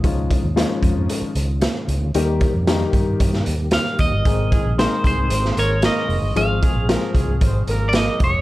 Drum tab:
HH |x-x-x-x-x-x-x-x-|x-x-x-x-x-x-x-x-|x-x-x-x-x-x-x-o-|x-x-x-x-x-x-x-x-|
SD |----o-------o---|----o----o--o---|----o----o--o---|----o-------o---|
BD |o-o---o---------|--o---o-o-----o-|o-o---o---------|--o---o-o-----o-|